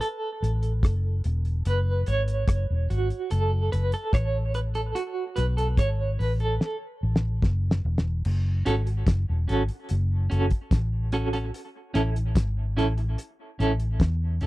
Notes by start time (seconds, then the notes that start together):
0.01 A4, closed hi-hat
0.43 A1, closed hi-hat
0.63 closed hi-hat
0.83 F#1, kick, cross-stick, closed hi-hat
1.24 E1, closed hi-hat
1.45 closed hi-hat
1.65 F#1 B4, closed hi-hat
2.06 G#1 C#5, closed hi-hat
2.28 closed hi-hat
2.48 F#1, kick, cross-stick, closed hi-hat
2.70 E1
2.90 G#1 F#4, closed hi-hat
3.10 closed hi-hat
3.31 F#1 A4, closed hi-hat
3.72 F#1 B4, closed hi-hat
3.92 A4, closed hi-hat
4.13 A1 C#5, kick, cross-stick, closed hi-hat
4.54 B4, closed hi-hat
4.75 A4, closed hi-hat
4.95 F#4, closed hi-hat
5.36 B1 B4, closed hi-hat
5.57 A4, closed hi-hat
5.77 G#1 C#5, kick, cross-stick, closed hi-hat
6.19 A1 B4, open hi-hat
6.40 A4, closed hi-hat
6.61 snare
7.03 A1
7.16 snare
7.42 F#1, kick, snare
7.71 snare
7.85 E1
7.98 snare
8.25 F#1, crash
8.65 G#1 C#4 F#4 A4, closed hi-hat
8.87 closed hi-hat
9.07 F#1, kick, snare, closed hi-hat
9.30 E1
9.48 G#1 C#4 F#4 A4, closed hi-hat
9.68 muted clean electric guitar stroke, closed hi-hat
9.89 F#1, closed hi-hat
10.30 F#1 C#4 F#4 A4, closed hi-hat
10.50 kick, closed hi-hat
10.71 A1, kick, snare, closed hi-hat
11.12 C#4 F#4 A4, closed hi-hat
11.33 C#4 F#4 A4, closed hi-hat
11.54 closed hi-hat
11.94 A1 C#4 E4 A4, closed hi-hat
12.16 closed hi-hat
12.35 G#1, kick, snare, closed hi-hat
12.77 A1 C#4 E4 A4, closed hi-hat
12.98 muted clean electric guitar stroke, closed hi-hat
13.18 closed hi-hat
13.59 A1 C#4 E4 A4, closed hi-hat
13.80 closed hi-hat
14.00 E2, kick, snare, closed hi-hat
14.41 E1 C#4 E4 A4, closed hi-hat